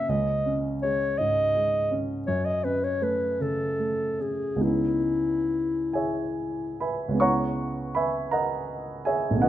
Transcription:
Already playing: grand piano C#3 A#3 C#4, clarinet E5
0.09 grand piano C#2, clarinet D#5
0.46 grand piano C#4
0.82 grand piano G#3, clarinet C#5
1.18 grand piano G#2, clarinet D#5
1.55 grand piano G#3
1.91 grand piano C#4
2.26 grand piano F#2, clarinet C#5
2.45 clarinet D#5
2.64 grand piano C#4, clarinet B4
2.84 clarinet C#5
3.02 grand piano A3, clarinet B4
3.40 grand piano C#3, clarinet A4
3.79 grand piano A3
4.19 grand piano C#4, clarinet G#4
4.56 grand piano C#2 G#3 B3 C#4 D#4
4.62 clarinet E4
5.93 grand piano G#4 C#5 E5 G#5
6.80 grand piano B4 E5 G#5 B5
7.08 grand piano C#2 G#3
7.14 grand piano B3 C#4
7.20 grand piano E4 C#5 F#5 A#5 C#6
7.95 grand piano B4 E5 G#5 B5
8.31 grand piano A#4 D#5 F#5 A#5
9.05 grand piano G#4 C#5 E5 G#5
9.30 grand piano B1 A3
9.36 grand piano B3 C#4
9.42 grand piano D#4 F#4 B4 D#5 F#5

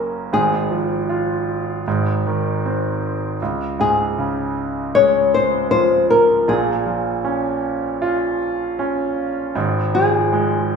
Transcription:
Already playing: grand piano F#1 F#2 A#3 C#4, nylon-string guitar A#4
0.33 grand piano G#1 G#2, nylon-string guitar G#4
0.71 grand piano F3
1.09 grand piano F4
1.87 grand piano G#1 G#2
2.27 grand piano D#3
2.65 grand piano C4
3.42 grand piano C#2
3.79 grand piano G#2, nylon-string guitar G#4
4.18 grand piano C#3
4.95 grand piano G#3, nylon-string guitar C#5
5.34 nylon-string guitar C5
5.71 grand piano F3, nylon-string guitar C5
6.10 nylon-string guitar A#4
6.48 grand piano A#1 A#2, nylon-string guitar G#4
6.86 grand piano F3
7.24 grand piano C#4
8.02 grand piano F4
8.79 grand piano C#4
9.55 grand piano G#1 G#2
9.94 grand piano F3, nylon-string guitar G#4
10.33 grand piano G#3

